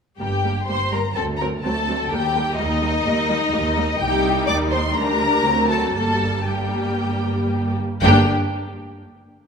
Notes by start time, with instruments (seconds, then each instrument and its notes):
0.19 double bass section G1, cello section G2, viola section G3 A#3, violin section G4 G5
0.44 viola section G3 A#3
0.67 double bass section G1, cello section G2, viola section G3 A#3, violin section C5 C6
0.92 viola section G3 A#3, violin section A#4 A#5
1.15 cello section D2, double bass section D2, viola section F#3 C4, violin section A4 A5
1.37 viola section F#3 C4, violin section A#4 A#5
1.63 cello section D2, double bass section D2, viola section F#3 C4, violin section A4 A5
1.88 viola section F#3 C4
2.09 cello section D#2, double bass section D#2, viola section G3 A#3, violin section G4 G5
2.35 viola section G3 A#3
2.57 cello section D#2, double bass section D#2, viola section G3 A#3, violin section D#4 D#5
2.81 viola section G3 A#3
3.05 cello section D#2, double bass section D#2, viola section G3 A#3
3.29 viola section G3 A#3
3.52 cello section D#2, double bass section D#2, viola section G3 A#3
3.75 viola section G3 A#3
3.99 cello section C2, double bass section C2, viola section G3 D#4, violin section G4 G5
4.46 cello section D#2, double bass section D#2, violin section D5 D6
4.70 violin section C5 C6
4.94 cello section D2, double bass section D2, viola section G3 D4, violin section A#4 A#5
5.44 cello section D2, double bass section D2, viola section F#3 C4
5.70 violin section A4 A5
5.94 double bass section G1, cello section G2, viola section G3 A#3, violin section A4 A5
6.45 viola section G3 A#3, violin section G4 G5
8.02 double bass section G1, cello section G2, viola section A#3 D4, violin section G4 G5